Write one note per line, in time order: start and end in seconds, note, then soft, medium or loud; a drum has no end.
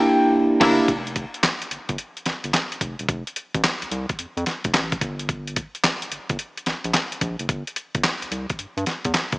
0.00 0.60 A#3 loud
0.00 0.61 D4 loud
0.00 0.61 E4 loud
0.00 0.61 G4 medium
0.00 0.29 G5 medium
0.60 0.81 G1 loud
0.60 0.81 A#3 loud
0.60 0.81 D4 loud
0.60 0.81 E4 loud
0.60 0.81 G4 loud
0.60 0.81 A#4 loud
0.60 kick loud
0.60 snare loud
0.60 crash medium
0.88 1.26 F1 loud
0.88 kick loud
0.88 closed hi-hat medium
1.07 closed hi-hat medium
1.16 kick medium
1.16 closed hi-hat medium
1.34 closed hi-hat medium
1.43 snare loud
1.43 clap medium
1.43 closed hi-hat medium
1.62 closed hi-hat medium
1.71 1.78 G1 soft
1.71 closed hi-hat medium
1.89 1.97 G1 medium
1.89 kick medium
1.89 closed hi-hat medium
1.98 closed hi-hat medium
2.17 closed hi-hat soft
2.26 2.33 G1 soft
2.26 snare medium
2.26 closed hi-hat medium
2.44 2.52 G1 medium
2.44 closed hi-hat medium
2.54 snare medium
2.54 clap medium
2.54 closed hi-hat medium
2.72 closed hi-hat soft
2.81 2.96 F1 medium
2.81 kick medium
2.81 closed hi-hat medium
2.99 3.07 E1 medium
2.99 closed hi-hat soft
3.09 3.23 F1 loud
3.09 kick loud
3.09 closed hi-hat medium
3.27 closed hi-hat medium
3.36 closed hi-hat medium
3.54 3.62 A1 loud
3.54 kick medium
3.54 closed hi-hat soft
3.64 snare loud
3.64 clap loud
3.64 closed hi-hat medium
3.82 3.86 C2 soft
3.82 closed hi-hat medium
3.91 4.06 C2 medium
3.91 closed hi-hat medium
4.09 kick medium
4.09 closed hi-hat medium
4.19 4.26 F2 soft
4.19 closed hi-hat medium
4.37 4.45 F2 loud
4.37 closed hi-hat soft
4.46 snare medium
4.46 closed hi-hat medium
4.64 4.72 F1 medium
4.64 kick medium
4.64 closed hi-hat medium
4.74 4.96 A1 medium
4.74 snare medium
4.74 clap medium
4.74 closed hi-hat medium
4.92 kick medium
4.92 closed hi-hat soft
5.01 5.61 G1 medium
5.01 kick medium
5.01 closed hi-hat medium
5.19 closed hi-hat medium
5.29 kick loud
5.29 closed hi-hat medium
5.47 closed hi-hat medium
5.56 kick medium
5.56 closed hi-hat medium
5.75 closed hi-hat soft
5.84 snare loud
5.84 clap medium
5.84 closed hi-hat medium
6.02 closed hi-hat medium
6.11 6.19 G1 soft
6.11 closed hi-hat medium
6.29 6.37 G1 medium
6.29 kick medium
6.29 closed hi-hat medium
6.39 closed hi-hat medium
6.57 closed hi-hat soft
6.66 6.74 A#1 soft
6.66 snare medium
6.66 closed hi-hat medium
6.84 6.92 A#1 medium
6.84 closed hi-hat medium
6.94 snare medium
6.94 clap medium
6.94 closed hi-hat medium
7.12 closed hi-hat medium
7.21 7.36 A#1 medium
7.21 kick medium
7.21 closed hi-hat medium
7.39 7.47 F#1 medium
7.39 closed hi-hat medium
7.49 7.64 G1 medium
7.49 kick loud
7.49 closed hi-hat medium
7.67 closed hi-hat medium
7.76 closed hi-hat medium
7.95 8.02 G1 medium
7.95 kick medium
7.95 closed hi-hat soft
8.04 snare loud
8.04 clap loud
8.04 closed hi-hat medium
8.22 8.26 C2 soft
8.22 closed hi-hat medium
8.31 8.46 C2 medium
8.31 closed hi-hat medium
8.50 kick medium
8.50 closed hi-hat medium
8.59 8.66 G2 medium
8.59 closed hi-hat medium
8.77 8.85 G2 loud
8.77 closed hi-hat soft
8.86 snare medium
8.86 closed hi-hat medium
9.05 9.13 E2 medium
9.05 kick medium
9.05 closed hi-hat medium
9.14 snare loud
9.14 clap medium
9.14 closed hi-hat medium
9.32 9.39 G1 medium
9.32 kick medium
9.32 closed hi-hat soft